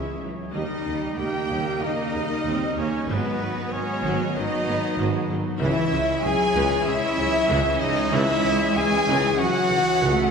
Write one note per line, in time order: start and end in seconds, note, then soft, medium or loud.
0.00 0.50 E3 medium
0.00 0.19 G#3 medium
0.00 0.22 G#3 medium
0.00 0.50 C#4 medium
0.00 0.21 E4 medium
0.00 0.22 E4 medium
0.00 0.50 G#4 medium
0.00 0.50 C#5 medium
0.00 0.22 E5 medium
0.00 0.23 E5 medium
0.22 0.35 C#2 medium
0.22 0.31 C#2 soft
0.22 0.30 E3 medium
0.22 0.54 F#3 medium
0.52 0.66 D#2 medium
0.52 0.62 D#2 medium
0.52 2.92 C#3 medium
0.52 0.83 G3 medium
0.52 2.92 G3 medium
0.52 1.17 G3 medium
0.52 1.13 D#4 loud
0.52 3.04 D#4 medium
0.52 1.14 D#4 medium
0.52 3.09 G4 medium
0.52 3.09 A#4 medium
0.52 5.43 D#5 medium
0.52 1.20 D#5 medium
0.52 1.14 D#5 medium
0.86 0.99 D#2 medium
0.86 0.94 D#2 medium
0.86 0.94 D#3 medium
1.17 1.25 D#2 medium
1.17 1.31 D#2 medium
1.17 1.27 C#3 medium
1.17 2.46 A#3 medium
1.17 1.82 G4 loud
1.17 1.84 G4 medium
1.17 1.80 G5 medium
1.17 1.83 G5 loud
1.17 1.81 G5 medium
1.49 1.57 D#2 medium
1.49 1.63 D#2 medium
1.49 1.80 G3 medium
1.81 1.89 D#2 medium
1.81 1.95 D#2 medium
1.81 1.91 D#3 medium
1.81 2.77 D#4 loud
1.81 2.77 D#4 medium
1.81 2.80 D#5 medium
1.81 2.77 D#5 loud
1.81 2.77 D#5 medium
2.14 2.22 D#2 medium
2.14 2.27 D#2 medium
2.14 2.22 C#3 medium
2.45 2.53 D#2 loud
2.45 2.59 D#2 medium
2.45 2.76 G3 medium
2.45 2.77 C4 medium
2.76 2.85 D#2 medium
2.76 2.90 D#2 medium
2.76 2.87 D#3 medium
2.76 3.08 A#3 medium
2.76 3.08 C#4 medium
2.76 3.09 C#4 medium
2.76 3.08 C#5 medium
2.76 3.09 C#5 medium
3.08 3.17 G#1 loud
3.08 3.23 G#1 medium
3.08 5.58 F#3 medium
3.08 3.39 F#3 medium
3.08 3.40 G#3 medium
3.08 3.71 B3 loud
3.08 5.58 B3 medium
3.08 3.74 B3 medium
3.08 5.62 B3 medium
3.08 5.43 B3 loud
3.08 5.43 F#4 loud
3.08 5.43 G#4 medium
3.08 3.70 B4 loud
3.08 3.72 B4 medium
3.08 3.73 B4 medium
3.40 3.48 G#1 medium
3.40 3.55 G#1 medium
3.40 3.49 D#3 medium
3.40 3.72 F#3 medium
3.71 3.80 G#1 medium
3.71 3.86 G#1 medium
3.71 3.81 D#3 medium
3.71 4.34 G#3 medium
3.71 4.35 C#4 medium
3.71 4.36 C#4 loud
3.71 4.35 C#5 loud
3.71 4.34 C#5 loud
3.71 4.35 C#5 loud
4.03 4.11 G#1 loud
4.03 4.18 G#1 loud
4.03 4.33 F#3 loud
4.34 4.42 G#1 medium
4.34 4.49 G#1 medium
4.34 4.44 D#3 medium
4.34 4.66 F#3 medium
4.34 5.28 D#4 loud
4.34 5.31 D#4 loud
4.34 5.28 D#5 medium
4.34 5.30 D#5 loud
4.66 4.74 G#1 medium
4.66 4.81 G#1 medium
4.66 4.76 D#3 medium
4.66 4.99 B3 medium
4.98 5.06 G#1 loud
4.98 5.12 G#1 loud
4.98 5.28 F#3 medium
4.98 5.30 G#3 loud
5.29 5.38 G#1 medium
5.29 5.44 G#1 medium
5.29 5.37 D#3 medium
5.29 5.62 F#3 medium
5.60 5.69 C#2 loud
5.60 5.74 C#2 loud
5.60 10.31 E3 loud
5.60 5.92 E3 loud
5.60 5.91 E3 loud
5.60 10.31 E3 loud
5.60 10.31 C#4 loud
5.60 10.31 C#4 medium
5.60 10.31 C#4 loud
5.60 6.25 E4 loud
5.60 6.20 E4 loud
5.60 10.31 G#4 loud
5.60 10.31 C#5 loud
5.60 6.20 E5 loud
5.60 6.21 E5 loud
5.92 6.00 C#2 medium
5.92 6.06 C#2 medium
5.92 6.02 C#3 medium
5.92 6.24 G#3 medium
6.23 6.31 C#2 medium
6.23 6.37 C#2 medium
6.23 6.34 C#3 medium
6.23 6.56 F#3 loud
6.23 6.87 G#4 loud
6.23 6.86 G#4 loud
6.23 6.87 G#5 loud
6.23 6.86 G#5 loud
6.55 6.63 C#2 loud
6.55 6.68 C#2 loud
6.55 6.85 E3 loud
6.55 6.87 E3 loud
6.86 6.95 C#2 medium
6.86 7.00 C#2 medium
6.86 6.96 C#3 medium
6.86 7.19 G#3 loud
6.86 7.80 E4 loud
6.86 7.81 E4 loud
6.86 7.81 E5 loud
6.86 7.80 E5 loud
6.86 7.85 E5 loud
7.18 7.26 C#2 medium
7.18 7.32 C#2 medium
7.18 7.26 C#3 medium
7.18 7.51 F#3 medium
7.49 7.57 C#2 loud
7.49 7.63 C#2 loud
7.49 7.79 E3 loud
7.49 7.82 E3 loud
7.80 7.88 C#2 medium
7.80 7.94 C#2 medium
7.80 7.90 C#3 medium
7.80 9.40 G#3 loud
7.80 8.15 D#4 loud
7.80 8.14 D#4 loud
7.80 8.13 D#5 loud
7.80 8.14 D#5 loud
8.12 8.20 C#2 loud
8.12 8.25 C#2 loud
8.12 8.43 E3 loud
8.12 8.75 E4 loud
8.12 8.76 E5 loud
8.12 8.78 E5 loud
8.43 8.51 C#2 medium
8.43 8.57 C#2 medium
8.43 8.53 C#3 medium
8.75 8.83 C#2 medium
8.75 8.88 C#2 medium
8.75 8.85 C#3 medium
8.75 9.41 G#4 loud
8.75 9.40 G#4 loud
8.75 9.39 G#5 loud
8.75 9.40 G#5 loud
9.07 9.20 C#2 loud
9.07 9.15 C#2 loud
9.07 9.37 E3 loud
9.37 9.47 C#2 medium
9.37 9.52 C#2 medium
9.37 9.47 C#3 medium
9.37 9.71 F#3 loud
9.37 10.31 F#4 loud
9.37 10.31 F#5 loud
9.69 9.82 C#2 medium
9.69 9.78 C#2 medium
9.69 9.78 C#3 medium
9.69 10.03 E3 loud
10.02 10.14 C#2 loud
10.02 10.10 C#2 loud
10.02 10.31 E3 loud
10.02 10.31 A3 loud